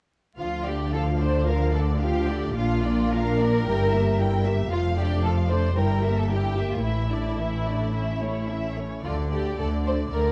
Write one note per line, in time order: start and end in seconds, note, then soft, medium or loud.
0.39 2.52 D2 soft
0.39 2.52 D3 soft
0.39 0.64 F3 soft
0.39 0.64 F4 soft
0.39 0.64 F5 soft
0.66 0.94 A3 soft
0.66 0.93 D4 soft
0.66 0.93 G4 soft
0.66 0.93 D5 soft
0.93 1.20 F3 soft
0.93 1.20 F4 soft
0.93 1.01 A4 soft
0.93 1.20 F5 soft
1.20 1.47 A3 soft
1.20 1.47 D4 soft
1.20 1.47 C5 soft
1.20 1.47 D5 soft
1.47 1.72 F3 soft
1.47 1.72 F4 soft
1.47 1.74 A#4 soft
1.47 1.72 F5 soft
1.74 2.01 A3 soft
1.74 2.01 D4 soft
1.74 1.82 A4 soft
1.74 2.01 D5 soft
2.01 2.28 F3 soft
2.01 2.28 F4 soft
2.01 2.55 G4 soft
2.01 2.28 F5 soft
2.29 2.56 A3 soft
2.29 2.55 D4 soft
2.29 2.56 D5 soft
2.56 3.67 A#1 soft
2.56 3.67 A#2 soft
2.56 2.83 D4 soft
2.56 3.12 F4 soft
2.56 2.83 F4 soft
2.56 2.82 F5 soft
2.84 3.13 A#3 soft
2.84 3.11 D4 soft
2.84 3.12 D5 soft
3.12 3.39 D4 soft
3.12 3.40 F4 soft
3.12 4.46 A#4 medium
3.12 3.40 F5 soft
3.40 3.66 A#3 soft
3.40 3.67 D4 soft
3.40 3.67 D5 soft
3.66 4.71 G1 soft
3.66 4.71 G2 soft
3.66 3.91 G3 soft
3.66 3.91 E4 soft
3.66 3.91 G5 soft
3.92 4.19 A#3 soft
3.92 4.19 G4 soft
3.92 4.19 E5 soft
4.19 4.45 G3 soft
4.19 4.45 E4 soft
4.19 4.45 G5 soft
4.45 4.71 A#3 soft
4.45 4.71 G4 soft
4.45 4.71 E5 soft
4.71 5.74 F1 soft
4.71 5.74 F2 soft
4.71 4.95 F3 soft
4.71 4.95 F4 soft
4.71 4.79 F4 soft
4.71 4.96 F5 soft
4.97 5.24 A3 soft
4.97 5.24 D4 soft
4.97 5.23 G4 soft
4.97 5.24 D5 soft
5.23 5.50 F3 soft
5.23 5.50 F4 soft
5.23 5.32 A4 medium
5.23 5.50 F5 soft
5.50 5.77 A3 soft
5.50 5.77 D4 soft
5.50 5.76 C5 medium
5.50 5.77 D5 soft
5.76 6.84 G1 soft
5.76 6.84 G2 soft
5.76 6.01 G3 soft
5.76 6.01 E4 soft
5.76 6.17 A#4 soft
5.76 6.01 G5 soft
6.03 6.30 A#3 soft
6.03 6.30 G4 soft
6.03 6.30 E5 soft
6.17 6.30 A4 soft
6.29 6.57 G3 soft
6.29 6.57 E4 soft
6.29 6.69 G4 soft
6.29 6.57 G5 soft
6.56 6.83 A#3 soft
6.56 6.83 G4 soft
6.56 6.83 E5 soft
6.72 6.84 F4 soft
6.83 8.81 A1 soft
6.83 8.80 A2 soft
6.83 7.09 E3 soft
6.83 7.09 E4 soft
6.83 8.74 E4 soft
6.83 7.09 E5 soft
7.11 7.39 A3 soft
7.11 7.39 D4 soft
7.11 7.39 D5 soft
7.39 7.67 E3 soft
7.39 7.67 E4 soft
7.39 7.67 E5 soft
7.66 7.94 A3 soft
7.66 7.94 D4 soft
7.66 7.95 D5 soft
7.94 8.20 C#4 soft
7.94 8.20 E4 soft
7.94 8.20 E5 soft
8.22 8.50 A3 soft
8.22 8.49 C#4 soft
8.22 8.50 C#5 soft
8.49 8.77 C#4 soft
8.49 8.77 E4 soft
8.49 8.77 E5 soft
8.77 9.04 A3 soft
8.77 9.05 C#4 soft
8.77 9.05 C#5 soft
9.04 9.52 D2 soft
9.04 9.52 D3 soft
9.04 9.31 A3 soft
9.04 9.31 D4 soft
9.04 9.13 F4 soft
9.04 9.30 D5 soft
9.31 9.58 A3 soft
9.31 9.58 D4 soft
9.31 9.58 G4 soft
9.31 9.57 D5 soft
9.58 10.05 D2 soft
9.58 10.05 D3 soft
9.58 9.84 A3 soft
9.58 9.84 D4 soft
9.58 9.67 A4 soft
9.58 9.84 D5 soft
9.85 10.11 A3 soft
9.85 10.11 D4 soft
9.85 9.94 C5 soft
9.85 10.09 D5 soft
10.10 10.32 D2 soft
10.10 10.32 D3 soft
10.10 10.32 A3 soft
10.10 10.32 D4 soft
10.10 10.32 A#4 soft
10.10 10.32 D5 soft